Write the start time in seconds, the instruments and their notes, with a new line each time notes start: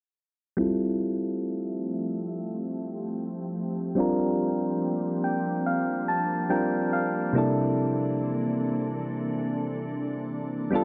0.57 ambient pad F3 A3 C4 G4 E5, synth keys G3 C4 E4 F4
0.62 synth keys A4
3.95 synth keys G3 C4 D4 F4, ambient pad A#3 D4
4.00 synth keys A#4
5.24 synth keys G5
5.66 synth keys F5
6.08 synth keys A5
6.49 synth keys G3 C4 D4 F4 A#4 G5
6.93 synth keys F5
7.33 synth keys C3 G3 A#3 D4 E4, ambient pad E3 A4
7.38 synth keys A4
10.71 ambient pad F3 A3 B3 G4, synth keys G3 B3 D4 F4
10.75 synth keys A4